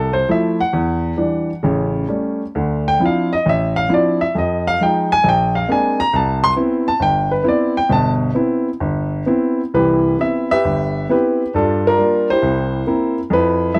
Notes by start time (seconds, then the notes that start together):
Already playing: C2 A4
0.13 C5
0.29 F3 A3 E4 E5
0.60 F#5
0.73 E2
1.17 E3 G3 D4
1.63 A1 C#3
2.08 G3 A3 C#4
2.55 D2 D3
2.88 G5
3.00 F3 C4 D4 E4
3.06 F5
3.33 D#5
3.46 A1 E5
3.76 F5
3.89 F3 C4 D4 E4
3.94 D5
4.21 E5
4.35 F2 D#5
4.67 F5
4.81 F3 G#3 D#4 G5
5.12 G#5
5.24 A#1
5.29 G5
5.55 F5
5.68 G#3 A#3 C4 D4 G#5
6.00 A#5
6.13 C2 A5
6.44 C6
6.56 B3 C4 E4
6.88 A5
7.00 G1 G5
7.31 B4
7.44 B3 C4 E4
7.48 D5
7.77 G5
7.89 G1 B2 A5
8.35 B3 C4 E4
8.80 G1
9.26 B3 C4 E4
9.74 C2 E3 E4 G4 B4
10.19 B3 C4 E4 E5
10.51 G4 B4 E5
10.65 G1
11.09 B3 C4 E4 G4 B4
11.54 G2 G3 D4 F4 A4
11.87 D4 F4 A#4
11.98 G3 A#3 F4
12.30 E4 G4 C5
12.42 C2
12.87 A#3 C4 E4
13.30 F2 B4
13.34 E4
13.74 F3 A3 E4 E5